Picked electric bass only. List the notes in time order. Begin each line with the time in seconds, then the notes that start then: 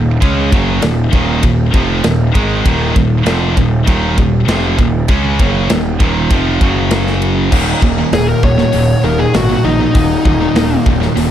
Already playing: D#1
0.22 C#2
0.52 F#1
0.83 D#1
1.13 D#1
1.43 D#1
1.74 F1
2.05 D#1
2.35 G#1
2.65 D#1
2.96 D#1
3.25 F1
3.57 D#1
3.88 D#1
4.18 D#1
4.47 F1
4.79 D#1
5.09 C#2
5.40 F#1
5.70 D#1
6.00 D#1
6.31 F1
6.61 F#1
7.52 D#1
7.82 D#1
8.12 D#1
8.43 D#1
8.74 D#1
9.04 D#1
9.34 G#1
9.64 A#1
9.95 D#1
10.26 D#1
10.55 D#1
10.86 D#1
11.16 D#1